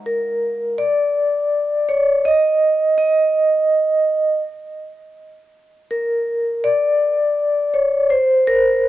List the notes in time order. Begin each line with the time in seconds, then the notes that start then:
0.06 A#4
0.78 D5
1.88 C#5
2.25 D#5
2.98 D#5
5.91 A#4
6.64 D5
7.74 C#5
8.10 C5
8.47 A#4